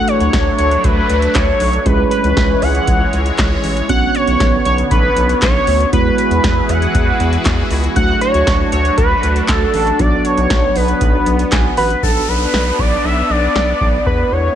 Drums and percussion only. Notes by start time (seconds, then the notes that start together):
0.08 closed hi-hat
0.20 closed hi-hat
0.33 kick, snare, closed hi-hat
0.59 closed hi-hat
0.71 closed hi-hat
0.84 kick, closed hi-hat
1.09 closed hi-hat
1.22 closed hi-hat
1.35 kick, snare, clap, closed hi-hat
1.60 open hi-hat
1.73 closed hi-hat
1.86 kick, closed hi-hat
2.11 closed hi-hat
2.24 closed hi-hat
2.37 kick, snare, closed hi-hat
2.62 open hi-hat
2.75 closed hi-hat
2.87 kick, closed hi-hat
3.13 closed hi-hat
3.26 closed hi-hat
3.38 kick, snare, clap, closed hi-hat
3.64 open hi-hat
3.77 closed hi-hat
3.89 kick, closed hi-hat
4.15 closed hi-hat
4.27 closed hi-hat
4.40 kick, snare, closed hi-hat
4.65 closed hi-hat
4.78 closed hi-hat
4.91 kick, closed hi-hat
5.17 closed hi-hat
5.29 closed hi-hat
5.42 kick, snare, clap, closed hi-hat
5.67 open hi-hat
5.81 closed hi-hat
5.93 kick, closed hi-hat
6.18 closed hi-hat
6.31 closed hi-hat
6.44 kick, snare, closed hi-hat
6.69 closed hi-hat
6.82 closed hi-hat
6.95 kick, closed hi-hat
7.20 closed hi-hat
7.33 closed hi-hat
7.45 kick, snare, clap, closed hi-hat
7.71 open hi-hat
7.84 closed hi-hat
7.96 kick, closed hi-hat
8.21 closed hi-hat
8.34 closed hi-hat
8.47 kick, snare, closed hi-hat
8.72 closed hi-hat
8.85 closed hi-hat
8.98 kick, closed hi-hat
9.23 closed hi-hat
9.36 closed hi-hat
9.48 kick, snare, clap, closed hi-hat
9.74 open hi-hat
9.87 closed hi-hat
9.99 kick, closed hi-hat
10.25 closed hi-hat
10.38 closed hi-hat
10.50 kick, snare, closed hi-hat
10.76 open hi-hat
10.88 closed hi-hat
11.01 kick, closed hi-hat
11.26 closed hi-hat
11.39 closed hi-hat
11.52 kick, snare, clap, closed hi-hat
11.77 open hi-hat
11.90 closed hi-hat
12.03 kick
12.54 snare
12.79 kick
13.56 snare
13.81 kick
14.06 kick